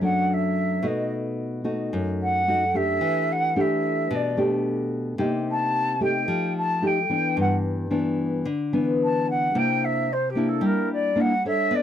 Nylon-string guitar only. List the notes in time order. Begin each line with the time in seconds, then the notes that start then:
Already playing: F#2
0.01 F#3 A3 D4
0.83 B2 A3 D#4 F#4
1.64 A3 D#4 F#4
1.93 F#2
2.48 A3 D#4 F#4
2.74 A3 D4 G4
3.01 E3
3.56 A3 D4 G4
4.11 B2
4.37 A3 D4 G4
5.18 C3 A#3 D#4 G4
6.00 A3 D#4 G4
6.28 F3
6.82 A3 D#4 G4
7.10 E3 B3 D4
7.37 G2
7.91 E3 B3 D4
8.45 D3
8.73 E3 B3 D4
9.55 C3 A#3 D4 E4
10.35 A#3 D4 E4
10.61 G3
11.15 A#3 D4 E4
11.45 D4 A4 C#5
11.71 B3